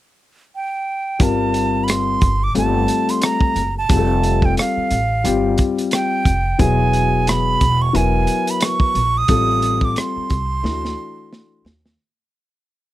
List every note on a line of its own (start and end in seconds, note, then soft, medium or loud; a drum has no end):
0.55 1.25 G5 medium
1.19 2.17 G1 medium
1.19 2.23 G3 medium
1.19 2.23 C4 medium
1.19 2.23 F4 medium
1.19 2.23 A#4 medium
1.19 kick medium
1.19 closed hi-hat medium
1.23 1.85 A5 medium
1.54 closed hi-hat medium
1.84 1.92 B5 medium
1.88 2.45 C6 medium
1.88 cross-stick loud
1.88 closed hi-hat medium
2.21 2.52 G1 medium
2.21 kick medium
2.21 closed hi-hat medium
2.44 2.56 D6 medium
2.54 2.85 G1 medium
2.54 3.58 G3 medium
2.54 3.58 A3 medium
2.54 3.58 C4 medium
2.54 3.58 F4 medium
2.54 3.12 A5 medium
2.54 closed hi-hat medium
2.88 closed hi-hat medium
3.09 3.26 C6 medium
3.09 closed hi-hat medium
3.21 3.76 A#5 medium
3.21 cross-stick loud
3.21 closed hi-hat medium
3.41 kick medium
3.56 3.86 F#1 medium
3.56 closed hi-hat medium
3.78 4.47 A5 medium
3.89 4.53 F1 medium
3.89 4.92 G3 medium
3.89 4.93 C4 medium
3.89 4.93 F4 medium
3.89 3.97 G#4 medium
3.89 kick loud
3.89 closed hi-hat medium
3.96 4.96 A4 medium
4.23 closed hi-hat medium
4.42 4.58 G5 medium
4.42 kick medium
4.57 5.63 F5 medium
4.57 cross-stick loud
4.57 closed hi-hat medium
4.77 muted upright bass stroke soft
4.91 5.21 A1 medium
4.91 closed hi-hat medium
5.24 5.55 G1 medium
5.24 6.27 G3 medium
5.24 6.27 C4 medium
5.24 6.28 F4 medium
5.24 6.28 G4 medium
5.24 closed hi-hat medium
5.58 kick medium
5.58 closed hi-hat medium
5.78 closed hi-hat medium
5.91 6.62 G5 medium
5.91 cross-stick loud
5.91 closed hi-hat medium
6.25 6.56 F1 medium
6.25 kick medium
6.25 closed hi-hat medium
6.58 7.56 E1 medium
6.58 7.62 F#3 medium
6.58 7.62 B3 medium
6.58 7.62 E4 medium
6.58 7.63 G#4 medium
6.58 7.30 G#5 medium
6.58 kick loud
6.58 closed hi-hat medium
6.93 closed hi-hat medium
7.27 7.83 B5 medium
7.27 cross-stick loud
7.27 closed hi-hat medium
7.61 7.91 E1 medium
7.61 kick medium
7.61 closed hi-hat medium
7.82 7.97 C#6 medium
7.93 8.25 E1 medium
7.93 8.97 F#3 medium
7.93 8.97 B3 medium
7.93 8.97 E4 medium
7.93 8.97 A#4 medium
7.93 8.52 G#5 medium
7.93 closed hi-hat medium
8.27 closed hi-hat medium
8.47 8.66 B5 medium
8.47 closed hi-hat medium
8.61 cross-stick loud
8.61 closed hi-hat medium
8.65 9.19 C#6 loud
8.80 kick medium
8.95 9.26 A#1 medium
8.95 closed hi-hat medium
9.18 9.86 D#6 loud
9.28 9.92 A1 loud
9.28 10.32 G3 medium
9.28 10.32 C4 medium
9.28 10.32 F4 medium
9.28 10.32 A4 medium
9.28 kick loud
9.28 closed hi-hat medium
9.62 closed hi-hat medium
9.81 10.01 D6 loud
9.81 kick medium
9.96 11.66 C6 medium
9.96 cross-stick loud
9.96 closed hi-hat medium
10.16 muted upright bass stroke soft
10.30 10.61 C2 medium
10.30 kick medium
10.30 closed hi-hat medium
10.63 10.94 D2 medium
10.63 11.66 E3 medium
10.63 11.67 A3 medium
10.63 11.67 D4 medium
10.63 10.71 E4 medium
10.63 snare soft
10.71 11.70 F#4 medium
10.85 snare soft
11.33 snare medium
11.65 11.95 D#2 medium
11.65 snare medium
11.86 snare medium